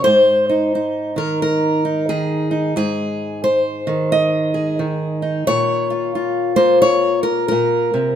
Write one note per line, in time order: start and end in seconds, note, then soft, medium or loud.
0.04 2.74 G#2 medium
0.04 1.14 C5 loud
0.49 0.75 D#4 soft
0.75 1.84 D#4 soft
1.16 2.08 D#3 medium
1.16 1.41 A#4 medium
1.42 2.09 A#4 medium
1.85 2.50 D#4 soft
2.09 2.74 D#3 medium
2.09 2.76 G#4 medium
2.51 2.73 D#4 soft
2.76 5.45 G#2 medium
2.76 3.43 G#4 medium
3.44 4.54 C5 medium
3.87 4.78 D#3 medium
4.12 5.22 D#5 medium
4.54 5.45 G#4 soft
4.79 5.44 D#3 medium
5.22 5.45 D#4 soft
5.47 7.50 A#2 medium
5.47 6.56 C#5 loud
5.90 6.15 F4 soft
6.15 8.15 F4 soft
6.56 8.15 A#3 medium
6.56 6.81 C5 medium
6.82 7.23 C#5 loud
7.23 7.47 A#4 medium
7.48 7.93 A#2 medium
7.48 8.15 A#4 medium
7.94 8.15 C3 medium